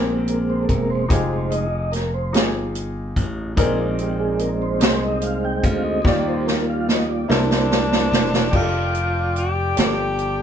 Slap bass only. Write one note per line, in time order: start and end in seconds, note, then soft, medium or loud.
0.00 0.65 A#1 medium
0.69 1.07 E1 medium
1.10 2.34 F1 medium
2.34 3.13 G1 medium
3.16 3.54 A1 medium
3.57 4.81 A#1 medium
4.81 5.60 C2 medium
5.63 6.02 D2 medium
6.05 7.25 D#2 medium
7.29 8.08 C2 medium
8.12 8.50 E1 medium
8.53 9.73 F1 medium
9.78 10.42 G1 medium